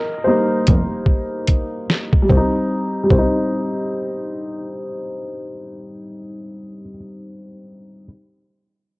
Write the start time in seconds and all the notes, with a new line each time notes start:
Already playing: A#4 D#5
0.24 G3 A#3 D#4 C5
0.67 F1, kick, closed hi-hat
1.06 kick
1.48 kick, closed hi-hat
1.90 snare
2.13 kick
2.22 G3
2.29 C2 C4, kick
2.37 D#4
3.03 G3
3.10 C2 C4, kick
3.18 D#4